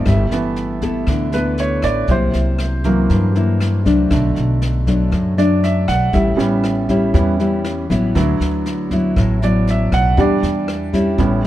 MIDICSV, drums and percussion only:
0, 0, Header, 1, 2, 480
1, 0, Start_track
1, 0, Key_signature, 2, "major"
1, 0, Tempo, 505902
1, 59, Time_signature, 4, 2, 24, 8
1, 10881, End_track
2, 0, Start_track
2, 0, Title_t, "Drums"
2, 53, Note_on_c, 9, 37, 59
2, 53, Note_on_c, 9, 38, 23
2, 57, Note_on_c, 9, 36, 56
2, 148, Note_off_c, 9, 37, 0
2, 148, Note_off_c, 9, 38, 0
2, 152, Note_off_c, 9, 36, 0
2, 296, Note_on_c, 9, 38, 23
2, 391, Note_off_c, 9, 38, 0
2, 534, Note_on_c, 9, 38, 23
2, 629, Note_off_c, 9, 38, 0
2, 775, Note_on_c, 9, 38, 24
2, 776, Note_on_c, 9, 36, 24
2, 870, Note_off_c, 9, 38, 0
2, 871, Note_off_c, 9, 36, 0
2, 1013, Note_on_c, 9, 37, 56
2, 1013, Note_on_c, 9, 38, 20
2, 1018, Note_on_c, 9, 36, 59
2, 1108, Note_off_c, 9, 37, 0
2, 1108, Note_off_c, 9, 38, 0
2, 1112, Note_off_c, 9, 36, 0
2, 1255, Note_on_c, 9, 38, 23
2, 1350, Note_off_c, 9, 38, 0
2, 1496, Note_on_c, 9, 38, 25
2, 1590, Note_off_c, 9, 38, 0
2, 1730, Note_on_c, 9, 37, 55
2, 1730, Note_on_c, 9, 38, 24
2, 1737, Note_on_c, 9, 36, 23
2, 1825, Note_off_c, 9, 37, 0
2, 1825, Note_off_c, 9, 38, 0
2, 1832, Note_off_c, 9, 36, 0
2, 1968, Note_on_c, 9, 38, 21
2, 1976, Note_on_c, 9, 36, 60
2, 2063, Note_off_c, 9, 38, 0
2, 2071, Note_off_c, 9, 36, 0
2, 2214, Note_on_c, 9, 38, 22
2, 2309, Note_off_c, 9, 38, 0
2, 2453, Note_on_c, 9, 37, 59
2, 2453, Note_on_c, 9, 38, 22
2, 2548, Note_off_c, 9, 37, 0
2, 2548, Note_off_c, 9, 38, 0
2, 2694, Note_on_c, 9, 38, 24
2, 2698, Note_on_c, 9, 36, 24
2, 2789, Note_off_c, 9, 38, 0
2, 2793, Note_off_c, 9, 36, 0
2, 2938, Note_on_c, 9, 38, 23
2, 2940, Note_on_c, 9, 36, 54
2, 3033, Note_off_c, 9, 38, 0
2, 3035, Note_off_c, 9, 36, 0
2, 3182, Note_on_c, 9, 38, 22
2, 3277, Note_off_c, 9, 38, 0
2, 3420, Note_on_c, 9, 37, 55
2, 3420, Note_on_c, 9, 38, 23
2, 3515, Note_off_c, 9, 37, 0
2, 3515, Note_off_c, 9, 38, 0
2, 3660, Note_on_c, 9, 36, 25
2, 3661, Note_on_c, 9, 38, 24
2, 3755, Note_off_c, 9, 36, 0
2, 3756, Note_off_c, 9, 38, 0
2, 3897, Note_on_c, 9, 37, 57
2, 3897, Note_on_c, 9, 38, 23
2, 3900, Note_on_c, 9, 36, 62
2, 3991, Note_off_c, 9, 37, 0
2, 3991, Note_off_c, 9, 38, 0
2, 3995, Note_off_c, 9, 36, 0
2, 4139, Note_on_c, 9, 38, 22
2, 4234, Note_off_c, 9, 38, 0
2, 4379, Note_on_c, 9, 38, 24
2, 4474, Note_off_c, 9, 38, 0
2, 4620, Note_on_c, 9, 38, 22
2, 4621, Note_on_c, 9, 36, 26
2, 4715, Note_off_c, 9, 38, 0
2, 4716, Note_off_c, 9, 36, 0
2, 4861, Note_on_c, 9, 36, 51
2, 4861, Note_on_c, 9, 37, 56
2, 4861, Note_on_c, 9, 38, 21
2, 4956, Note_off_c, 9, 36, 0
2, 4956, Note_off_c, 9, 37, 0
2, 4956, Note_off_c, 9, 38, 0
2, 5105, Note_on_c, 9, 38, 23
2, 5199, Note_off_c, 9, 38, 0
2, 5347, Note_on_c, 9, 38, 22
2, 5442, Note_off_c, 9, 38, 0
2, 5578, Note_on_c, 9, 37, 57
2, 5578, Note_on_c, 9, 38, 26
2, 5579, Note_on_c, 9, 36, 23
2, 5673, Note_off_c, 9, 37, 0
2, 5673, Note_off_c, 9, 38, 0
2, 5674, Note_off_c, 9, 36, 0
2, 5818, Note_on_c, 9, 38, 22
2, 5819, Note_on_c, 9, 36, 56
2, 5913, Note_off_c, 9, 38, 0
2, 5914, Note_off_c, 9, 36, 0
2, 6062, Note_on_c, 9, 38, 22
2, 6156, Note_off_c, 9, 38, 0
2, 6297, Note_on_c, 9, 37, 57
2, 6297, Note_on_c, 9, 38, 24
2, 6392, Note_off_c, 9, 37, 0
2, 6392, Note_off_c, 9, 38, 0
2, 6536, Note_on_c, 9, 36, 24
2, 6536, Note_on_c, 9, 38, 23
2, 6631, Note_off_c, 9, 36, 0
2, 6631, Note_off_c, 9, 38, 0
2, 6776, Note_on_c, 9, 36, 56
2, 6776, Note_on_c, 9, 38, 22
2, 6871, Note_off_c, 9, 36, 0
2, 6871, Note_off_c, 9, 38, 0
2, 7017, Note_on_c, 9, 38, 22
2, 7112, Note_off_c, 9, 38, 0
2, 7254, Note_on_c, 9, 37, 56
2, 7254, Note_on_c, 9, 38, 23
2, 7349, Note_off_c, 9, 37, 0
2, 7349, Note_off_c, 9, 38, 0
2, 7497, Note_on_c, 9, 36, 24
2, 7503, Note_on_c, 9, 38, 24
2, 7592, Note_off_c, 9, 36, 0
2, 7598, Note_off_c, 9, 38, 0
2, 7736, Note_on_c, 9, 36, 58
2, 7740, Note_on_c, 9, 37, 57
2, 7740, Note_on_c, 9, 38, 25
2, 7831, Note_off_c, 9, 36, 0
2, 7834, Note_off_c, 9, 37, 0
2, 7834, Note_off_c, 9, 38, 0
2, 7978, Note_on_c, 9, 38, 23
2, 8072, Note_off_c, 9, 38, 0
2, 8214, Note_on_c, 9, 38, 24
2, 8309, Note_off_c, 9, 38, 0
2, 8453, Note_on_c, 9, 38, 23
2, 8454, Note_on_c, 9, 36, 27
2, 8548, Note_off_c, 9, 36, 0
2, 8548, Note_off_c, 9, 38, 0
2, 8695, Note_on_c, 9, 36, 64
2, 8699, Note_on_c, 9, 37, 62
2, 8699, Note_on_c, 9, 38, 22
2, 8790, Note_off_c, 9, 36, 0
2, 8793, Note_off_c, 9, 37, 0
2, 8793, Note_off_c, 9, 38, 0
2, 8940, Note_on_c, 9, 38, 22
2, 9034, Note_off_c, 9, 38, 0
2, 9179, Note_on_c, 9, 38, 26
2, 9273, Note_off_c, 9, 38, 0
2, 9413, Note_on_c, 9, 36, 24
2, 9414, Note_on_c, 9, 37, 61
2, 9414, Note_on_c, 9, 38, 26
2, 9508, Note_off_c, 9, 36, 0
2, 9508, Note_off_c, 9, 37, 0
2, 9508, Note_off_c, 9, 38, 0
2, 9653, Note_on_c, 9, 36, 56
2, 9657, Note_on_c, 9, 38, 21
2, 9748, Note_off_c, 9, 36, 0
2, 9752, Note_off_c, 9, 38, 0
2, 9896, Note_on_c, 9, 38, 25
2, 9991, Note_off_c, 9, 38, 0
2, 10135, Note_on_c, 9, 37, 63
2, 10135, Note_on_c, 9, 38, 24
2, 10229, Note_off_c, 9, 37, 0
2, 10229, Note_off_c, 9, 38, 0
2, 10372, Note_on_c, 9, 36, 25
2, 10375, Note_on_c, 9, 38, 25
2, 10467, Note_off_c, 9, 36, 0
2, 10470, Note_off_c, 9, 38, 0
2, 10611, Note_on_c, 9, 36, 58
2, 10611, Note_on_c, 9, 38, 23
2, 10706, Note_off_c, 9, 36, 0
2, 10706, Note_off_c, 9, 38, 0
2, 10881, End_track
0, 0, End_of_file